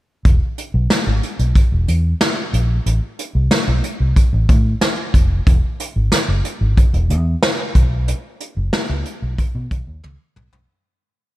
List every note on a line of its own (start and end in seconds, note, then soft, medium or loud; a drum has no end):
0.25 0.37 E1 medium
0.25 kick loud
0.25 closed hi-hat medium
0.58 closed hi-hat medium
0.74 0.86 B1 medium
0.90 snare loud
0.90 closed hi-hat medium
1.07 1.19 G#1 medium
1.23 closed hi-hat medium
1.39 1.52 B1 medium
1.39 closed hi-hat soft
1.55 kick medium
1.55 closed hi-hat medium
1.72 1.84 E1 medium
1.88 2.13 E2 medium
1.88 closed hi-hat medium
2.20 snare loud
2.20 closed hi-hat medium
2.53 2.78 A#1 medium
2.53 closed hi-hat medium
2.86 2.98 A1 medium
2.86 closed hi-hat medium
3.19 closed hi-hat medium
3.35 3.47 C2 medium
3.51 snare loud
3.51 closed hi-hat medium
3.68 3.80 B1 medium
3.83 closed hi-hat medium
4.00 4.12 C2 medium
4.16 kick medium
4.16 closed hi-hat medium
4.33 4.45 A1 medium
4.49 4.73 A2 medium
4.49 kick loud
4.49 closed hi-hat medium
4.81 snare loud
4.81 closed hi-hat medium
5.14 5.39 F1 medium
5.14 kick medium
5.14 closed hi-hat medium
5.47 5.59 E1 loud
5.47 kick loud
5.47 closed hi-hat medium
5.80 closed hi-hat medium
5.96 6.08 G#1 medium
6.12 snare medium
6.12 closed hi-hat medium
6.28 6.41 F#1 medium
6.45 closed hi-hat medium
6.61 6.73 G#1 medium
6.77 kick medium
6.77 closed hi-hat medium
6.93 7.11 E1 medium
6.93 closed hi-hat soft
7.10 7.34 E2 medium
7.10 closed hi-hat medium
7.42 snare loud
7.42 closed hi-hat medium
7.75 8.12 B1 medium
7.75 kick medium
7.75 closed hi-hat medium
8.08 closed hi-hat medium
8.40 closed hi-hat medium
8.57 8.69 F#1 medium
8.73 snare medium
8.73 closed hi-hat medium
8.89 9.02 C#2 medium
9.05 closed hi-hat medium
9.22 9.34 B1 medium
9.38 kick medium
9.38 closed hi-hat medium
9.55 9.67 B2 medium
9.71 9.83 B1 medium
9.71 kick medium
9.71 closed hi-hat medium
9.87 9.99 D#2 medium
10.04 10.16 C#2 medium
10.04 high tom soft
10.36 10.48 B1 medium
10.36 mid tom medium
10.53 10.65 B1 medium
10.53 floor tom medium